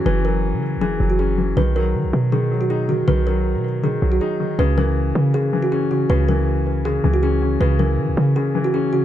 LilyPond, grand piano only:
\new Staff \with { instrumentName = "Grand piano" } { \clef bass \time 4/4 \key cis \dorian \tempo 4 = 159 <e fis cis'>8 fis4. e8 fis8 cis'8 e8 | dis8 fis4. dis8 fis8 dis'8 dis8 | dis8 fis4. dis8 fis8 dis'8 dis8 | cis8 e4. cis8 e8 cis'8 cis8 |
cis8 e4. cis8 e8 cis'8 cis8 | cis8 e4. cis8 e8 cis'8 cis8 | }